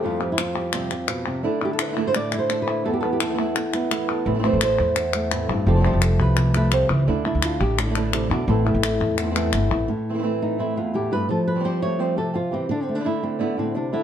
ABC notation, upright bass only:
X:1
M:4/4
L:1/16
Q:1/4=171
K:Am
V:1 name="Upright bass" clef=bass
z16 | z16 | z16 | A,,,3 A,,,3 E,,8 A,,,2 |
F,,,3 F,,,3 C,,8 ^C,,2 | D,,3 D,,3 A,,,8 E,,2 | A,,,3 A,,,3 E,,6 G,,,2 A,,,2 | z16 |
z16 | z16 |]